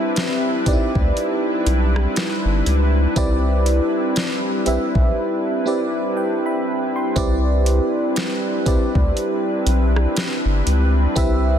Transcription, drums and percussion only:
0, 0, Header, 1, 2, 480
1, 0, Start_track
1, 0, Key_signature, 0, "major"
1, 0, Tempo, 1000000
1, 1518, Time_signature, 4, 2, 24, 8
1, 5562, End_track
2, 0, Start_track
2, 0, Title_t, "Drums"
2, 78, Note_on_c, 9, 42, 73
2, 83, Note_on_c, 9, 38, 125
2, 126, Note_off_c, 9, 42, 0
2, 131, Note_off_c, 9, 38, 0
2, 318, Note_on_c, 9, 42, 61
2, 319, Note_on_c, 9, 36, 91
2, 366, Note_off_c, 9, 42, 0
2, 367, Note_off_c, 9, 36, 0
2, 458, Note_on_c, 9, 36, 104
2, 506, Note_off_c, 9, 36, 0
2, 560, Note_on_c, 9, 42, 58
2, 608, Note_off_c, 9, 42, 0
2, 799, Note_on_c, 9, 42, 80
2, 847, Note_off_c, 9, 42, 0
2, 942, Note_on_c, 9, 37, 93
2, 990, Note_off_c, 9, 37, 0
2, 1039, Note_on_c, 9, 42, 83
2, 1043, Note_on_c, 9, 38, 106
2, 1087, Note_off_c, 9, 42, 0
2, 1091, Note_off_c, 9, 38, 0
2, 1279, Note_on_c, 9, 42, 70
2, 1327, Note_off_c, 9, 42, 0
2, 1518, Note_on_c, 9, 36, 107
2, 1518, Note_on_c, 9, 42, 62
2, 1566, Note_off_c, 9, 36, 0
2, 1566, Note_off_c, 9, 42, 0
2, 1758, Note_on_c, 9, 42, 79
2, 1806, Note_off_c, 9, 42, 0
2, 1997, Note_on_c, 9, 42, 74
2, 2002, Note_on_c, 9, 38, 110
2, 2045, Note_off_c, 9, 42, 0
2, 2050, Note_off_c, 9, 38, 0
2, 2237, Note_on_c, 9, 42, 64
2, 2285, Note_off_c, 9, 42, 0
2, 2377, Note_on_c, 9, 36, 106
2, 2425, Note_off_c, 9, 36, 0
2, 3438, Note_on_c, 9, 36, 113
2, 3438, Note_on_c, 9, 42, 58
2, 3486, Note_off_c, 9, 36, 0
2, 3486, Note_off_c, 9, 42, 0
2, 3678, Note_on_c, 9, 42, 72
2, 3726, Note_off_c, 9, 42, 0
2, 3918, Note_on_c, 9, 42, 74
2, 3923, Note_on_c, 9, 38, 113
2, 3966, Note_off_c, 9, 42, 0
2, 3971, Note_off_c, 9, 38, 0
2, 4158, Note_on_c, 9, 42, 62
2, 4159, Note_on_c, 9, 36, 95
2, 4206, Note_off_c, 9, 42, 0
2, 4207, Note_off_c, 9, 36, 0
2, 4298, Note_on_c, 9, 36, 106
2, 4346, Note_off_c, 9, 36, 0
2, 4400, Note_on_c, 9, 42, 62
2, 4448, Note_off_c, 9, 42, 0
2, 4639, Note_on_c, 9, 42, 81
2, 4687, Note_off_c, 9, 42, 0
2, 4783, Note_on_c, 9, 37, 91
2, 4831, Note_off_c, 9, 37, 0
2, 4879, Note_on_c, 9, 42, 80
2, 4883, Note_on_c, 9, 38, 109
2, 4927, Note_off_c, 9, 42, 0
2, 4931, Note_off_c, 9, 38, 0
2, 5120, Note_on_c, 9, 42, 73
2, 5168, Note_off_c, 9, 42, 0
2, 5359, Note_on_c, 9, 36, 112
2, 5359, Note_on_c, 9, 42, 58
2, 5407, Note_off_c, 9, 36, 0
2, 5407, Note_off_c, 9, 42, 0
2, 5562, End_track
0, 0, End_of_file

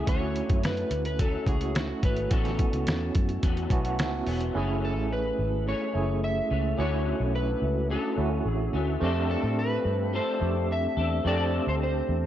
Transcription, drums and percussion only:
0, 0, Header, 1, 2, 480
1, 0, Start_track
1, 0, Tempo, 559180
1, 64, Time_signature, 4, 2, 24, 8
1, 10527, End_track
2, 0, Start_track
2, 0, Title_t, "Drums"
2, 63, Note_on_c, 9, 36, 99
2, 63, Note_on_c, 9, 42, 80
2, 149, Note_off_c, 9, 36, 0
2, 149, Note_off_c, 9, 42, 0
2, 306, Note_on_c, 9, 42, 69
2, 392, Note_off_c, 9, 42, 0
2, 424, Note_on_c, 9, 42, 45
2, 427, Note_on_c, 9, 36, 94
2, 510, Note_off_c, 9, 42, 0
2, 513, Note_off_c, 9, 36, 0
2, 545, Note_on_c, 9, 42, 75
2, 558, Note_on_c, 9, 38, 86
2, 631, Note_off_c, 9, 42, 0
2, 644, Note_off_c, 9, 38, 0
2, 663, Note_on_c, 9, 42, 32
2, 749, Note_off_c, 9, 42, 0
2, 780, Note_on_c, 9, 42, 72
2, 866, Note_off_c, 9, 42, 0
2, 902, Note_on_c, 9, 42, 46
2, 988, Note_off_c, 9, 42, 0
2, 1024, Note_on_c, 9, 42, 76
2, 1025, Note_on_c, 9, 36, 92
2, 1110, Note_off_c, 9, 42, 0
2, 1111, Note_off_c, 9, 36, 0
2, 1258, Note_on_c, 9, 36, 85
2, 1265, Note_on_c, 9, 42, 61
2, 1343, Note_off_c, 9, 36, 0
2, 1351, Note_off_c, 9, 42, 0
2, 1381, Note_on_c, 9, 42, 51
2, 1466, Note_off_c, 9, 42, 0
2, 1504, Note_on_c, 9, 42, 77
2, 1511, Note_on_c, 9, 38, 94
2, 1590, Note_off_c, 9, 42, 0
2, 1597, Note_off_c, 9, 38, 0
2, 1742, Note_on_c, 9, 42, 59
2, 1743, Note_on_c, 9, 36, 87
2, 1828, Note_off_c, 9, 42, 0
2, 1829, Note_off_c, 9, 36, 0
2, 1858, Note_on_c, 9, 42, 47
2, 1944, Note_off_c, 9, 42, 0
2, 1980, Note_on_c, 9, 42, 84
2, 1984, Note_on_c, 9, 36, 98
2, 2066, Note_off_c, 9, 42, 0
2, 2070, Note_off_c, 9, 36, 0
2, 2103, Note_on_c, 9, 42, 33
2, 2113, Note_on_c, 9, 38, 35
2, 2188, Note_off_c, 9, 42, 0
2, 2199, Note_off_c, 9, 38, 0
2, 2222, Note_on_c, 9, 42, 73
2, 2224, Note_on_c, 9, 36, 89
2, 2308, Note_off_c, 9, 42, 0
2, 2310, Note_off_c, 9, 36, 0
2, 2344, Note_on_c, 9, 42, 49
2, 2430, Note_off_c, 9, 42, 0
2, 2462, Note_on_c, 9, 42, 77
2, 2475, Note_on_c, 9, 38, 99
2, 2548, Note_off_c, 9, 42, 0
2, 2561, Note_off_c, 9, 38, 0
2, 2701, Note_on_c, 9, 42, 70
2, 2708, Note_on_c, 9, 36, 83
2, 2787, Note_off_c, 9, 42, 0
2, 2793, Note_off_c, 9, 36, 0
2, 2823, Note_on_c, 9, 42, 45
2, 2908, Note_off_c, 9, 42, 0
2, 2944, Note_on_c, 9, 42, 77
2, 2946, Note_on_c, 9, 36, 81
2, 3030, Note_off_c, 9, 42, 0
2, 3032, Note_off_c, 9, 36, 0
2, 3065, Note_on_c, 9, 42, 32
2, 3151, Note_off_c, 9, 42, 0
2, 3178, Note_on_c, 9, 36, 95
2, 3184, Note_on_c, 9, 42, 64
2, 3264, Note_off_c, 9, 36, 0
2, 3270, Note_off_c, 9, 42, 0
2, 3302, Note_on_c, 9, 42, 52
2, 3388, Note_off_c, 9, 42, 0
2, 3424, Note_on_c, 9, 42, 80
2, 3431, Note_on_c, 9, 38, 93
2, 3510, Note_off_c, 9, 42, 0
2, 3517, Note_off_c, 9, 38, 0
2, 3661, Note_on_c, 9, 46, 43
2, 3747, Note_off_c, 9, 46, 0
2, 3781, Note_on_c, 9, 42, 41
2, 3867, Note_off_c, 9, 42, 0
2, 10527, End_track
0, 0, End_of_file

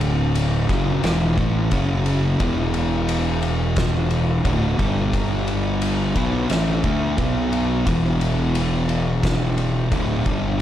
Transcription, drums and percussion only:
0, 0, Header, 1, 2, 480
1, 0, Start_track
1, 0, Tempo, 683371
1, 1693, Time_signature, 4, 2, 24, 8
1, 7456, End_track
2, 0, Start_track
2, 0, Title_t, "Drums"
2, 7, Note_on_c, 9, 51, 74
2, 77, Note_off_c, 9, 51, 0
2, 249, Note_on_c, 9, 51, 91
2, 319, Note_off_c, 9, 51, 0
2, 487, Note_on_c, 9, 36, 106
2, 489, Note_on_c, 9, 51, 76
2, 501, Note_on_c, 9, 38, 33
2, 558, Note_off_c, 9, 36, 0
2, 560, Note_off_c, 9, 51, 0
2, 571, Note_off_c, 9, 38, 0
2, 727, Note_on_c, 9, 51, 100
2, 739, Note_on_c, 9, 38, 106
2, 798, Note_off_c, 9, 51, 0
2, 809, Note_off_c, 9, 38, 0
2, 967, Note_on_c, 9, 36, 95
2, 969, Note_on_c, 9, 51, 60
2, 1037, Note_off_c, 9, 36, 0
2, 1039, Note_off_c, 9, 51, 0
2, 1204, Note_on_c, 9, 51, 79
2, 1207, Note_on_c, 9, 36, 90
2, 1274, Note_off_c, 9, 51, 0
2, 1277, Note_off_c, 9, 36, 0
2, 1445, Note_on_c, 9, 51, 77
2, 1516, Note_off_c, 9, 51, 0
2, 1685, Note_on_c, 9, 51, 83
2, 1687, Note_on_c, 9, 36, 107
2, 1755, Note_off_c, 9, 51, 0
2, 1757, Note_off_c, 9, 36, 0
2, 1923, Note_on_c, 9, 51, 77
2, 1993, Note_off_c, 9, 51, 0
2, 2168, Note_on_c, 9, 51, 93
2, 2238, Note_off_c, 9, 51, 0
2, 2406, Note_on_c, 9, 51, 74
2, 2476, Note_off_c, 9, 51, 0
2, 2644, Note_on_c, 9, 51, 93
2, 2647, Note_on_c, 9, 36, 115
2, 2655, Note_on_c, 9, 38, 114
2, 2714, Note_off_c, 9, 51, 0
2, 2717, Note_off_c, 9, 36, 0
2, 2726, Note_off_c, 9, 38, 0
2, 2884, Note_on_c, 9, 51, 64
2, 2954, Note_off_c, 9, 51, 0
2, 3125, Note_on_c, 9, 51, 79
2, 3126, Note_on_c, 9, 36, 97
2, 3196, Note_off_c, 9, 36, 0
2, 3196, Note_off_c, 9, 51, 0
2, 3366, Note_on_c, 9, 36, 118
2, 3366, Note_on_c, 9, 51, 75
2, 3436, Note_off_c, 9, 36, 0
2, 3436, Note_off_c, 9, 51, 0
2, 3606, Note_on_c, 9, 36, 98
2, 3607, Note_on_c, 9, 51, 88
2, 3677, Note_off_c, 9, 36, 0
2, 3678, Note_off_c, 9, 51, 0
2, 3846, Note_on_c, 9, 51, 72
2, 3916, Note_off_c, 9, 51, 0
2, 4085, Note_on_c, 9, 51, 96
2, 4155, Note_off_c, 9, 51, 0
2, 4325, Note_on_c, 9, 36, 98
2, 4325, Note_on_c, 9, 51, 77
2, 4395, Note_off_c, 9, 36, 0
2, 4395, Note_off_c, 9, 51, 0
2, 4563, Note_on_c, 9, 51, 93
2, 4574, Note_on_c, 9, 38, 101
2, 4633, Note_off_c, 9, 51, 0
2, 4645, Note_off_c, 9, 38, 0
2, 4802, Note_on_c, 9, 51, 71
2, 4804, Note_on_c, 9, 36, 93
2, 4873, Note_off_c, 9, 51, 0
2, 4874, Note_off_c, 9, 36, 0
2, 5043, Note_on_c, 9, 51, 90
2, 5044, Note_on_c, 9, 36, 100
2, 5114, Note_off_c, 9, 51, 0
2, 5115, Note_off_c, 9, 36, 0
2, 5286, Note_on_c, 9, 51, 77
2, 5356, Note_off_c, 9, 51, 0
2, 5526, Note_on_c, 9, 36, 108
2, 5526, Note_on_c, 9, 51, 89
2, 5596, Note_off_c, 9, 51, 0
2, 5597, Note_off_c, 9, 36, 0
2, 5767, Note_on_c, 9, 51, 70
2, 5838, Note_off_c, 9, 51, 0
2, 6006, Note_on_c, 9, 51, 89
2, 6076, Note_off_c, 9, 51, 0
2, 6244, Note_on_c, 9, 51, 73
2, 6314, Note_off_c, 9, 51, 0
2, 6486, Note_on_c, 9, 36, 100
2, 6486, Note_on_c, 9, 51, 89
2, 6497, Note_on_c, 9, 38, 107
2, 6556, Note_off_c, 9, 36, 0
2, 6556, Note_off_c, 9, 51, 0
2, 6568, Note_off_c, 9, 38, 0
2, 6726, Note_on_c, 9, 51, 65
2, 6796, Note_off_c, 9, 51, 0
2, 6966, Note_on_c, 9, 51, 85
2, 6967, Note_on_c, 9, 36, 101
2, 7036, Note_off_c, 9, 51, 0
2, 7037, Note_off_c, 9, 36, 0
2, 7204, Note_on_c, 9, 51, 70
2, 7207, Note_on_c, 9, 36, 107
2, 7274, Note_off_c, 9, 51, 0
2, 7277, Note_off_c, 9, 36, 0
2, 7456, End_track
0, 0, End_of_file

